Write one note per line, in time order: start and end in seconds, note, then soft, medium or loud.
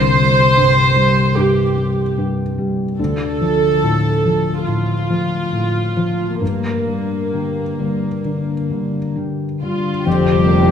0.00 1.33 C2 soft
0.00 3.02 C3 soft
0.00 2.07 D4 soft
0.00 0.56 G4 soft
0.00 1.34 C5 medium
0.17 0.80 G3 soft
0.17 1.35 E4 soft
0.57 1.21 G2 soft
0.57 2.17 G4 soft
0.96 1.61 G3 soft
0.96 1.77 G3 soft
1.36 2.01 G2 soft
1.36 3.40 E4 soft
1.36 2.18 G4 medium
1.77 2.42 G3 soft
1.77 2.57 G3 soft
2.18 2.83 G2 soft
2.18 3.03 G4 soft
2.58 2.99 G3 soft
2.58 3.02 G3 soft
2.99 4.63 D2 soft
2.99 6.45 D3 soft
2.99 4.63 A4 medium
3.41 4.08 F3 soft
3.41 4.65 E4 soft
3.83 4.50 A2 soft
3.83 5.51 F4 soft
4.24 4.92 F3 soft
4.24 5.08 A3 soft
4.66 5.35 A2 soft
4.66 6.45 E4 soft
4.66 6.42 F4 medium
5.09 5.79 F3 soft
5.09 5.94 A3 soft
5.52 6.23 A2 soft
5.52 6.45 F4 soft
5.96 6.42 F3 soft
5.96 6.45 A3 soft
6.41 10.09 G2 soft
6.41 8.21 G2 soft
6.41 9.13 A#3 medium
6.87 7.61 G3 soft
6.87 8.24 D4 soft
7.33 8.07 D3 soft
7.33 9.16 G4 soft
7.79 8.70 D3 soft
7.79 8.53 G3 soft
8.25 8.98 D3 soft
8.25 10.46 D4 soft
8.70 9.61 D3 soft
8.70 9.44 G3 soft
9.16 9.89 D3 soft
9.16 10.71 G4 soft
9.62 10.09 D3 soft
9.62 10.06 G3 soft
9.62 10.03 F4 soft
9.62 10.09 F4 soft
10.05 10.71 F1 soft
10.05 10.71 F2 soft
10.05 10.45 C4 soft
10.05 10.71 D4 soft
10.05 10.71 G4 soft
10.05 10.71 C5 soft
10.35 10.71 G3 soft
10.47 10.71 A#3 soft
10.47 10.71 D4 soft
10.63 10.71 E4 soft